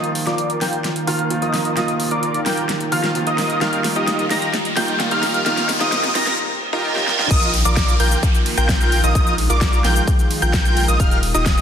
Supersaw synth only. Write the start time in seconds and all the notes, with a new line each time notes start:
Already playing: F4 A#4 D#5
0.27 F4 A#4 D5
0.61 F4 A#4 G5
1.07 F4 A#4 F5
1.42 F4 A#4 D#5
1.77 F4 A#4 D#5
2.11 F4 A#4 D5
2.46 F4 A#4 G5
2.92 F4 A#4 F5
3.27 F4 A#4 D#5
3.61 D#4 F4 G4 A#4 F5
3.96 D#4 F4 G4 A#4 D#5
4.30 D#4 F4 G4 A#4 A#5
4.77 D#4 F4 G4 A#4 G5
5.11 D#4 F4 G4 A#4 F5
5.46 D#4 F4 G4 A#4 F5
5.81 D#4 F4 G4 A#4 D#5
6.15 D#4 F4 G4 A#4 A#5
6.73 D#4 F4 G4 A#4 A#5
7.19 D#4 F4 G4 A#4 F5
7.31 F4 A#4 D#5
7.65 F4 A#4 D5
8.00 F4 A#4 G5
8.57 F4 A#4 G5
9.04 F4 A#4 D#5
9.15 D#5
9.50 F4 A#4 D5
9.84 F4 A#4 G5
10.42 F4 A#4 G5
10.88 F4 A#4 D#5
11.00 D#4 F4 G4 A#4 F5
11.34 D#4 F4 G4 A#4 D#5